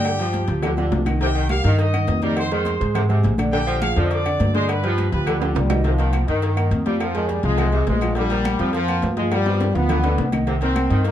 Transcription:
Already playing: G2 D3 D4 G4 D5 G5
0.05 cowbell, low agogo, claves
0.19 F3 F4 G4, cowbell
0.33 cowbell, high conga, low agogo
0.48 D2 F3 F4 G4, cowbell
0.63 D3, cowbell, high bongo, high conga, low conga, low agogo, claves
0.77 D3 F3 F4 G4, high bongo, high conga, low agogo
0.92 C2, cowbell, low bongo, high conga, low timbale
1.06 D#3 D#4 D#5, cowbell, low bongo, high conga, low agogo, claves
1.21 C3 D#3 D#4 G4 D#5 G5, cowbell, high conga, low agogo
1.35 D#3, cowbell, high conga, low agogo
1.49 G3 G4 A#4 F5, cowbell, high conga, low agogo, claves
1.64 G2 D#3 D#4 D#5, cowbell, high conga
1.78 D#5 D#6, cowbell, high conga, low agogo
1.93 D#3 D#4 D#5, high conga, low agogo, claves
2.07 F2, cowbell, high conga, low timbale, low agogo
2.22 D#3 G3 D#4 A#4 D#5 A#5, cowbell, high conga
2.37 C5 C6, cowbell, high conga, low agogo, claves
2.51 D#3 G#3 G#4 C5 C6, cowbell
2.65 cowbell, high conga, low agogo
2.80 G#2 G#3 G#4 C5, cowbell
2.94 C3, cowbell, high conga, low conga, low agogo, claves
3.09 C3 G#3 G#4 C5, high conga, low conga, low agogo
3.23 A#1, cowbell, high conga
3.38 D3 D4 D5, cowbell, high conga, low agogo, claves
3.53 D3 D4 G4 D5 G5, cowbell, low agogo
3.67 F3, cowbell, high conga, low agogo
3.81 F3 F4 G#4 F5, cowbell, high conga, low agogo, claves
3.96 F2 D3 F3 D4 D5, cowbell
4.04 D#5
4.10 D5 D6, cowbell, high conga, low agogo
4.25 D3 D4 D5, high conga, low agogo, claves
4.40 G2, cowbell, high conga, low timbale, low agogo
4.54 D3 G#3 D4 C5 D5 C6, cowbell, high conga
4.68 B4 B5, cowbell, high conga, low agogo, claves
4.83 F3 F4 G4, cowbell, high conga
4.98 cowbell, high conga, low agogo
5.11 D2 F3 F4 G4 B4 B5, cowbell
5.26 D3, cowbell, high conga, low conga, low agogo, claves
5.40 D3 F3 F4 G4, high conga, high timbale, low agogo
5.55 C2 G3, cowbell, high conga, high timbale
5.69 D#3 D#4 D#5, cowbell, high conga, low timbale, low agogo, claves
5.84 C3 D#3 F3 D#4 D#5, cowbell, high conga, low agogo
5.98 D#3 A#3 A#4 A#5, cowbell, high conga, low agogo
6.13 cowbell, high conga, low agogo, claves
6.28 G2 D#3 D#4 D#5 D#6, cowbell, high conga
6.42 cowbell, high conga, low agogo
6.56 A#3 A#4 A#5, high conga, low agogo, claves
6.71 F2, cowbell, high conga, low agogo
6.86 F3 G3 F4 F5, cowbell, high conga
7.00 F3, cowbell, low agogo, claves
7.15 D#3 G#3 G#4 G#5, cowbell, high conga
7.29 G3, cowbell, high conga, low agogo
7.43 C2 F3 G#3 F4 F5, cowbell
7.57 C3, cowbell, high conga, low conga, low agogo, claves
7.72 C3 G#3 G#4 G#5, high conga, low agogo
7.87 A#1 G#3, cowbell, high conga, low timbale
8.01 F3 F4 F5, cowbell, high conga, low agogo, claves
8.15 D3 F3 G3 F4 F5, cowbell, high conga, low agogo
8.30 F3 A#3 A#4 A#5, cowbell, high conga, low agogo
8.44 cowbell, high conga, low agogo, claves
8.59 F2 F3 F4 F5 F6, cowbell, high conga
8.73 F3, cowbell, high conga, low agogo
8.88 A#3 A#4 A#5, high conga, low agogo, claves
9.02 G2, cowbell, high conga, low timbale, low agogo
9.17 F3 G#3 F4 F5, cowbell, high conga
9.31 G3, cowbell, high bongo, high conga, low agogo, claves
9.46 F3 B3 B4 B5, cowbell, high bongo
9.60 cowbell, low bongo, high conga, low agogo
9.74 D2 F3 B3 F4 F5, cowbell, low bongo
9.89 D3, cowbell, high conga, low conga, low agogo, claves
10.03 D3 B3 B4 B5, low bongo, high conga, low agogo
10.18 C2, cowbell, low bongo, high conga
10.32 D#3 D#4 D#5, cowbell, low bongo, high conga, low agogo, claves
10.47 C3 D#3 D#4 D#5, cowbell, low agogo
10.61 D#3 A#3 C4 A#4 A#5, cowbell, low agogo
10.76 cowbell, high conga, low agogo, claves
10.90 G2 D#3 D#4 D#5 D#6, cowbell, high conga
11.04 A#3, cowbell, high conga, low agogo

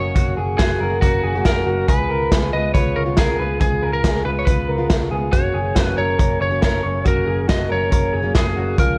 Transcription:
Already playing: F#1 F#3 A#3 C#4 F#4 C#5
0.15 F#1 F#3 A#3 C#4 F#4, kick, closed hi-hat
0.37 F#1 G#4
0.58 F#1 F#3 A#3 C#4 F#4 G#4, kick, snare, closed hi-hat
0.80 F#1 F#3 A#3 C#4 F#4 A#4
1.01 F#1 F#3 A#3 C#4 F#4 A#4, kick, closed hi-hat
1.06 F#4
1.23 F#1 G#4
1.35 F#2 C#3 F#3 A#3 C#4 F#4
1.45 F#1 A#4, kick, snare, closed hi-hat
1.66 F#1 F#3 A#3 C#4 F#4
1.87 C#2 C#3 B3 F4 G#4 B4, kick, closed hi-hat
2.10 C#2 A#4
2.31 C#2 C#3 G#3 B3 F4 G#4, kick, snare, closed hi-hat
2.53 C#2 C#3 G#3 B3 F4 B4 D#5
2.74 C#2 C#3 G#3 B3 F4 B4 C#5, kick, closed hi-hat
2.96 C#2 A#4 C#5
3.06 C#3 G#3 B3 F4
3.17 C#2 G#4 A#4, kick, snare, closed hi-hat
3.39 C#2 C#3 G#3 B3 F4 B4
3.60 C#2 C#3 G#3 B3 F4 G#4, kick, closed hi-hat
3.82 C#2 A#4
3.93 A#4
4.03 C#2 C#3 G#3 B3 F4 G#4, kick, snare, closed hi-hat
4.25 C#2 C#3 G#3 B3 F4 B4
4.39 C#5
4.45 C#2 C#3 G#3 B3 B4, kick, closed hi-hat
4.50 F4
4.68 C#2 A#4
4.78 C#3 G#3 B3 F4
4.90 C#2, kick, snare, closed hi-hat
5.10 C#2 C#3 G#3 B3 F4 G#4
5.32 F#1 C#3 F#3 A#3 C#4 F#4 C#5, kick, closed hi-hat
5.54 F#1 G#4
5.75 F#1 C#3 F#3 A#3 C#4 F#4, kick, snare, closed hi-hat
5.84 B4
5.96 F#1 C#3 F#3 A#3 C#4 A#4 C#5
6.18 F#1 C#3 F#3 A#3 C#4 A#4, kick, closed hi-hat
6.41 F#1 C#5
6.50 F#2 C#3 F#3 A#3 C#4
6.61 A#4 C#5, kick, snare, closed hi-hat
6.83 F#1 C#3 F#3 A#3 C#4 C#5
7.04 F#1 C#3 F#3 A#3 C#4 F#4 A#4, kick, closed hi-hat
7.27 F#1 G#4
7.47 F#1 C#3 F#3 A#3 C#4 F#4 D#5, kick, snare, closed hi-hat
7.69 F#1 C#3 F#3 A#3 C#4 A#4 C#5
7.90 F#1 C#3 F#3 A#3 C#4 A#4, kick, closed hi-hat
8.13 F#1 G#4
8.22 F#2 C#3 F#3 A#3 C#4
8.35 F#1 G#4, kick, snare, closed hi-hat
8.55 F#1 C#3 F#3 A#3 C#4 F#4
8.76 C#2 C#3 F3 G#3 C#4 F4 A#4, kick, closed hi-hat

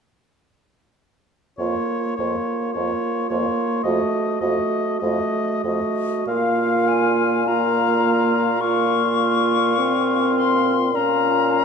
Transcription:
1.58 F2 A#3 F4 C#5
2.16 F2 A#3 F4 C#5
2.73 F2 A#3 F4 C#5
3.29 F2 A#3 F4 C#5
3.83 F2 A3 F#4 D#5
4.41 F2 A3 F#4 D#5
4.99 F2 A3 F#4 D#5
5.64 F2 A3 F#4 D#5
6.27 A#2 A#3 F4 F5
6.88 G#5
7.46 A#3 F4 F5 A#5
8.60 A#3 F4 F5 C#6
9.78 C4
10.36 C6
10.94 A#2 C#4 F4 F5 A#5

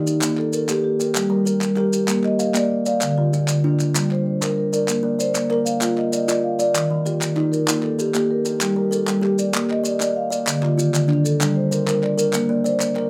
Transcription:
Already playing: D#4 G4
0.07 D#4, maracas
0.21 D#3 A#3, clap, maracas
0.38 A4, clap
0.53 A4 A#4, maracas
0.68 A#3 G4, clap, maracas
0.84 G4
1.00 G4 A#4, maracas
1.15 G3, clap, maracas
1.30 G3 A#4
1.45 A#4, maracas
1.61 G3, clap, maracas
1.76 G4 A#4, clap
1.93 G4, maracas
2.08 G3 A#3, clap, maracas
2.24 D#5, clap
2.39 D#5 F5, maracas
2.54 A#3 D5, clap, maracas
2.72 D5
2.86 D5 F5, maracas
3.01 D3, clap, maracas
3.17 D3 F4
3.33 F4, maracas
3.48 D3, clap, maracas
3.64 D4 F4
3.80 D4, clap, maracas
3.95 D3 G3, clap, maracas
4.11 C5, clap
4.26 C5
4.41 G3 A#4, clap, maracas
4.58 A#4
4.73 A#4 D5, maracas
4.88 A#3, clap, maracas
5.03 A#3 D5
5.19 C5 D5, maracas
5.34 A#3, clap, maracas
5.50 A#4, clap
5.65 F5, maracas
5.81 A#3 F4 A#4, clap, maracas
5.97 D#5, clap
6.12 D5 D#5, maracas
6.28 F4 D5, clap, maracas
6.44 F5
6.59 D5, maracas
6.74 D#3, clap, maracas
6.91 D#3
7.06 F4 G4, maracas
7.21 D#3, clap, maracas
7.36 D#4, clap
7.52 A#4, maracas
7.67 D#3 A#3 D#4, clap, maracas
7.83 A4, clap
7.99 G4 A4, maracas
8.14 A#3 G4, clap, maracas
8.31 A#4
8.45 G4, maracas
8.61 G3, clap, maracas
8.76 G3 A#4
8.91 A4 A#4, maracas
9.07 G3, clap, maracas
9.21 G4, clap
9.39 D5, maracas
9.53 G3 A#3 G4, clap, maracas
9.70 D#5, clap
9.84 D5 D#5, maracas
10.00 A#3 D5, clap, maracas
10.16 F5
10.30 D5, maracas
10.47 D3, clap, maracas
10.62 D3 F4, clap
10.78 D#3 F4, maracas
10.94 D3, clap, maracas
11.08 D4, clap
11.25 A4, maracas
11.40 D3 G3 D4, clap, maracas
11.56 C5
11.71 A#4 C5, maracas
11.87 G3 A#4, clap, maracas
12.03 D5, clap
12.18 A#4, maracas
12.33 A#3, clap, maracas
12.49 A#3 D5
12.64 C5 D5, maracas
12.80 A#3, clap, maracas
12.96 A#4, clap

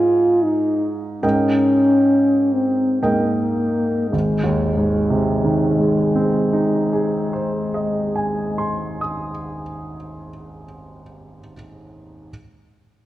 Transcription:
Already playing: G#2 F4 G#4 D#5 G#5
0.44 D#4
1.23 G#2 C#4 A#4 D#5 G5
2.53 C4
3.03 G#2 A#3 A#4 D#5 G5
4.10 G#1 G#3
4.44 D#2
4.77 G#2
5.10 C3
5.44 D#3
5.79 G#3
6.15 C4
6.53 D#4
6.93 G#4
7.33 C5
7.74 D#5
8.16 G#5
8.58 C6
9.01 D#6

